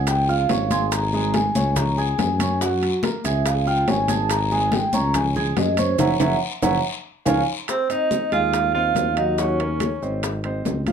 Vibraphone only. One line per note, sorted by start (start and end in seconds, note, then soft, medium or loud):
0.08 0.28 G5 loud
0.29 0.88 F5 loud
0.71 0.91 C6 loud
0.92 1.31 A#5 loud
1.34 1.74 G#5 medium
1.77 1.97 A#5 medium
1.97 2.57 G#5 medium
3.25 3.45 E5 loud
3.46 3.66 F5 medium
3.67 3.88 G5 loud
3.90 4.09 G#5 loud
4.10 4.30 A5 loud
4.31 4.51 A#5 loud
4.51 4.72 G#5 medium
4.73 4.93 G5 medium
4.94 5.15 A#5 loud
5.15 5.28 G#5 loud
5.58 5.78 D#5 loud
5.79 5.99 C5 medium
5.99 6.13 E5 loud
5.99 6.13 F#5 loud
5.99 6.13 A#5 loud
6.21 6.34 E5 medium
6.21 6.34 F#5 loud
6.21 6.35 A#5 medium
6.63 6.76 E5 loud
6.63 6.76 F#5 loud
6.63 6.76 A#5 loud
7.26 7.39 C#5 medium
7.26 7.39 F5 loud
7.26 7.39 G#5 loud
7.70 7.91 C5 medium
7.91 8.34 D#5 loud
8.34 8.72 F5 loud
8.75 9.19 F5 medium
9.18 9.39 D#5 loud
9.39 10.20 C#5 medium